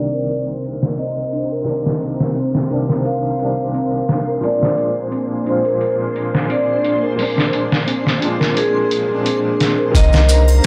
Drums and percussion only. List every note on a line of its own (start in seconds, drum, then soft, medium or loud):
0.13 closed hi-hat soft
0.29 closed hi-hat medium
0.64 closed hi-hat medium
0.83 snare soft
0.98 closed hi-hat medium
1.33 closed hi-hat medium
1.67 open hi-hat medium
1.86 snare soft
2.02 closed hi-hat medium
2.20 snare soft
2.36 closed hi-hat medium
2.55 snare soft
2.70 closed hi-hat medium
2.90 snare soft
3.05 closed hi-hat medium
3.39 closed hi-hat medium
3.74 closed hi-hat medium
4.09 snare soft
4.09 closed hi-hat medium
4.43 closed hi-hat medium
4.63 snare soft
4.77 closed hi-hat medium
5.12 closed hi-hat medium
5.46 closed hi-hat medium
5.65 closed hi-hat soft
5.81 closed hi-hat medium
6.16 closed hi-hat medium
6.35 snare soft
6.50 closed hi-hat medium
6.85 closed hi-hat medium
7.19 open hi-hat medium
7.38 snare soft
7.53 closed hi-hat medium
7.72 snare soft
7.88 closed hi-hat medium
8.07 snare soft
8.22 closed hi-hat medium
8.41 snare soft
8.57 closed hi-hat medium
8.91 closed hi-hat medium
9.26 closed hi-hat medium
9.60 snare soft
9.60 closed hi-hat medium
9.95 kick loud
9.95 closed hi-hat medium
9.95 maracas medium
10.13 snare soft
10.13 maracas soft
10.29 closed hi-hat medium
10.29 maracas loud
10.48 triangle medium
10.48 maracas soft